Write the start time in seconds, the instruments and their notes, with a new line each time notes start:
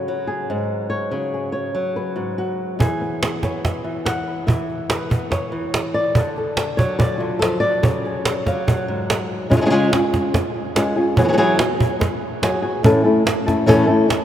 Already playing: nylon-string guitar F#4
0.08 nylon-string guitar F#3
0.27 nylon-string guitar G#4
0.50 nylon-string guitar G#2 F#4
0.90 nylon-string guitar C#5
1.11 nylon-string guitar C#3
1.34 nylon-string guitar G#4
1.52 nylon-string guitar C#5
1.75 nylon-string guitar F#3
1.96 nylon-string guitar B4
2.16 nylon-string guitar G#2 F#4
2.38 nylon-string guitar F#4
2.79 nylon-string guitar E3 B3 G#4, cajon bass
3.01 nylon-string guitar B3, cajon slap
3.23 nylon-string guitar B3, cajon slap
3.43 nylon-string guitar B3 C#5, cajon bass, cajon slap
3.65 cajon bass, cajon slap
3.84 nylon-string guitar E3
4.05 nylon-string guitar F#5, cajon slap
4.27 nylon-string guitar B4
4.47 nylon-string guitar E3 E5, cajon bass
4.70 cajon slap
4.89 nylon-string guitar B4, cajon slap
5.10 nylon-string guitar B3, cajon bass
5.31 nylon-string guitar C#5, cajon bass, cajon slap
5.52 nylon-string guitar E3
5.74 cajon slap
5.94 nylon-string guitar D5
6.15 nylon-string guitar D3, cajon bass
6.36 nylon-string guitar A4, cajon slap
6.57 cajon slap
6.77 nylon-string guitar F#3 C#5, cajon bass
6.99 nylon-string guitar D5, cajon bass
7.18 nylon-string guitar D3 F4
7.39 nylon-string guitar F3 A4, cajon slap
7.60 nylon-string guitar D3 D5
7.83 nylon-string guitar C#3 C#5, cajon bass
8.05 nylon-string guitar G#4, cajon slap
8.25 cajon slap
8.46 nylon-string guitar F#3 F5, cajon bass, cajon slap
8.67 nylon-string guitar F#5, cajon bass
8.88 nylon-string guitar G#2
9.10 cajon slap
9.50 nylon-string guitar C#3 G#3 C#4 F4 G#4, cajon bass
9.57 nylon-string guitar G#3 C#4 F4 G#4
9.61 nylon-string guitar G#3 C#4 F4 G#4
9.65 nylon-string guitar G#3 C#4 F4 G#4
9.70 nylon-string guitar C#3 G#3 C#4 F4 G#4
9.92 nylon-string guitar C#4 F4 G#4, cajon slap
10.14 cajon bass, cajon slap
10.34 muted nylon-string guitar stroke, cajon bass, cajon slap
10.75 nylon-string guitar G#3 C#4 F4 G#4, cajon slap
10.96 nylon-string guitar C#4 F4 G#4
11.16 nylon-string guitar E3 F#3 B3 F#4 G#4, cajon bass
11.23 nylon-string guitar F#3 B3 F#4 G#4
11.28 nylon-string guitar F#3 B3 F#4 G#4
11.33 nylon-string guitar F#3 B3 F#4 G#4
11.37 nylon-string guitar E3 F#3 B3 F#4 G#4, cajon slap
11.59 nylon-string guitar B3 F#4 G#4, cajon slap
11.80 cajon bass
12.00 muted nylon-string guitar stroke, cajon bass, cajon slap
12.42 nylon-string guitar F#3 B3 F#4 G#4, cajon slap
12.62 nylon-string guitar B3 F#4 G#4
12.83 nylon-string guitar A2 E3 A3 C#4 E4 A4, cajon bass
13.04 nylon-string guitar A3 C#4 E4 A4
13.25 muted nylon-string guitar stroke, cajon slap
13.46 nylon-string guitar A3 C#4 E4 A4, cajon bass, cajon slap
13.66 nylon-string guitar A2 E3 A3 C#4 E4 A4, cajon bass
13.87 nylon-string guitar A3 C#4 E4 A4
14.08 muted nylon-string guitar stroke, cajon slap